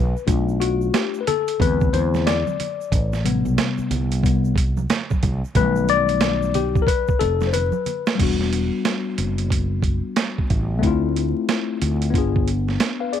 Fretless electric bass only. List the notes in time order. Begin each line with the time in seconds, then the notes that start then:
Already playing: B1
0.27 B1
1.60 E2
1.93 E2
2.92 A1
3.45 B1
3.78 muted fretless electric bass stroke
3.91 C2
5.23 C2
5.55 B1
7.21 F1
8.19 E1
9.18 F#1
10.50 A1
10.83 D2
11.82 D2
12.14 G1